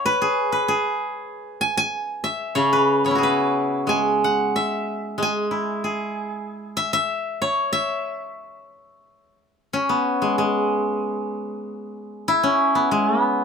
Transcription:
guzheng
Already playing: E4 C#5 E5 F#5 G#5 B5 C#6
0.06 B4
0.22 G#4
0.52 B4
0.68 G#4
1.61 G#5
1.77 G#5
2.24 E5
2.55 C#3 C#5
2.73 B4
3.05 B3 C#4 C#5
3.11 E4
3.15 F#4 G#4
3.23 B4
3.87 G#3 G#5
4.24 F#5
4.56 E5
5.18 G#3
5.22 G#5
5.51 E4
5.84 G#4
6.77 E5
6.93 E5
7.42 C#5
7.73 E5
9.73 C#4
9.89 B3
10.22 G#3
10.38 G#3
12.28 E4
12.43 C#4
12.75 B3
12.91 G#3
13.21 B3

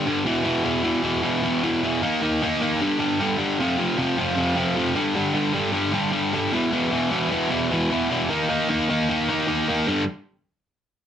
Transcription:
distorted electric guitar
0.06 G2 D3 G3
0.25 E2 B2 E3
0.44 E2 B2 E3
0.64 E2 B2 E3
0.84 E2 B2 E3
1.03 E2 B2 E3
1.23 E2 B2 E3
1.43 E2 B2 E3
1.63 E2 B2 E3
1.82 E2 B2 E3
2.02 D#3 A#3 D#4
2.21 D#3 A#3 D#4
2.42 D#3 A#3 D#4
2.62 D#3 A#3 D#4
2.81 G2 D3 G3
2.99 G2 D3 G3
3.20 G2 D3 G3
3.38 G2 D3 G3
3.60 F2 C3 F3
3.78 F2 C3 F3
3.98 F2 C3 F3
4.17 F2 C3 F3
4.36 F2 C3 F3
4.55 F2 C3 F3
4.76 F2 C3 F3
4.95 G2 D3 G3
5.14 G2 D3 G3
5.34 G2 D3 G3
5.53 G2 D3 G3
5.72 G2 D3 G3
5.92 G2 D3 G3
6.11 G2 D3 G3
6.33 G2 D3 G3
6.52 E2 B2 E3
6.71 E2 B2 E3
6.91 E2 B2 E3
7.11 E2 B2 E3
7.30 E2 B2 E3
7.50 E2 B2 E3
7.71 E2 B2 E3
7.91 E2 B2 E3
8.10 E2 B2 E3
8.29 D#3 A#3 D#4
8.49 D#3 A#3 D#4
8.69 D#3 A#3 D#4
8.89 D#3 A#3 D#4
9.09 D#3 A#3 D#4
9.28 D#3 A#3 D#4
9.47 D#3 A#3 D#4
9.68 D#3 A#3 D#4
9.87 G2 D3 G3

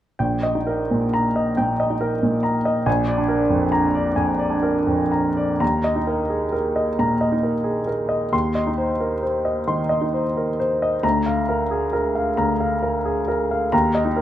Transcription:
grand piano
0.19 A#1 G5
0.43 D#5
0.55 D#4
0.67 A#4
0.91 A#2
1.14 A#5
1.36 D#5
1.57 A#2 G5
1.80 D#5
1.90 D#4
2.01 A#4
2.23 A#2
2.43 A#5
2.65 D#5
2.86 A#1 G#5
3.07 D5
3.18 D4
3.29 A#4
3.50 F2
3.72 A#5
3.95 D5
4.16 F2 G#5
4.39 D5
4.50 D4
4.63 A#4
4.87 F2
5.12 A#5
5.37 D5
5.60 D#2 A#5
5.84 D#5
5.96 D#4
6.07 A#4
6.30 G#4
6.52 A#4
6.76 D#5
6.99 A#2 A#5
7.21 D#5
7.32 D#4
7.43 A#4
7.64 G#4
7.87 A#4
8.09 D#5
8.33 D#2 C6
8.55 D#5
8.67 D#4
8.78 C5
9.01 A#4
9.23 C5
9.45 D#5
9.67 D#3 C6
9.89 D#5
10.01 D#4
10.14 C5
10.37 A#4
10.60 C5
10.82 D#5
11.03 D2 A#5
11.26 F5
11.49 A#4
11.71 G#4
11.93 A#4
12.15 F5
12.37 D2 A#5
12.60 F5
12.83 A#4
13.05 G#4
13.28 A#4
13.51 F5
13.72 D#2 A#5
13.95 D#5
14.05 D#4
14.16 A#4

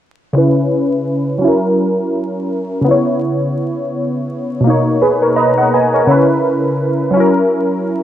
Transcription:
synth keys
0.33 C#3 C#4 E4
0.38 B4
1.38 F#3 C#4
1.44 E4 A#4
2.81 C#3 B3
2.88 E4 C#5
4.61 B2 A#3
4.67 D#4 C#5
5.02 G#4 B4
5.22 A#4 C#5
5.36 B4 D#5 A#5
5.58 D#5 F#5
5.74 B4 D#5 G#5
5.94 A#4 C#5
6.07 C#3 C#4 E4
6.11 B4
7.11 F#3 C#4
7.17 E4 A#4

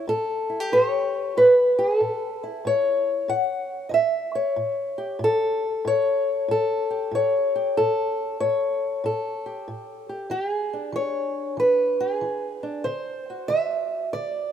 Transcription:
steel-string acoustic guitar
0.07 A2 A4
0.50 E4
0.60 G4
0.72 A2 C#5
1.37 A2 B4
1.52 B4
1.79 G#4
1.99 A2 A4
2.44 E4
2.65 A2 C#5
3.28 A2 F#5
3.89 A2 D#5
3.94 E5
4.35 C#5
4.56 A2
4.98 G4
5.19 A2
5.24 A4
5.85 A2 C#5
6.48 A2 A4
6.90 G4
7.11 A2 C#5
7.55 G4
7.77 A2 A4
8.40 A2 C#5
9.04 A2 A4
9.46 G4
9.68 A2
10.09 G4
10.30 E3 G4
10.51 G#4
10.73 D4
10.92 E3 C#5
11.57 E3 B4
12.00 G#4
12.21 E3
12.63 D4
12.84 D3 C5
13.30 F#4
13.48 D3 E5
14.13 D3 D5

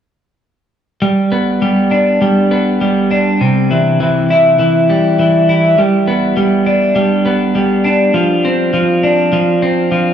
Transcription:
clean electric guitar
1.02 G3
1.32 B3
1.62 G3
1.91 D4
2.22 G3
2.51 B3
2.81 G3
3.11 D4
3.41 C3
3.71 E3
4.00 E3
4.30 E4
4.59 E3
4.90 G3
5.19 E3
5.49 E4
5.78 G3
6.08 B3
6.37 G3
6.66 D4
6.96 G3
7.26 B3
7.55 G3
7.85 D4
8.14 F3
8.45 C4
8.74 F3
9.03 D4
9.33 F3
9.62 C4
9.92 F3

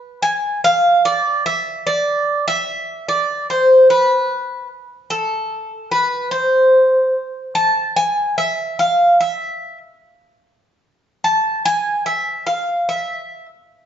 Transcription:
bouzouki
Already playing: B4
0.22 G#5
0.64 F5
1.05 D5
1.46 E5
1.87 D5
2.48 E5
3.09 D5
3.50 C5
3.90 B4
5.10 A4
5.92 B4
6.31 C5
7.55 A5
7.96 G#5
8.38 E5
8.79 F5
9.21 E5
11.24 A5
11.65 G#5
12.06 E5
12.47 F5
12.89 E5

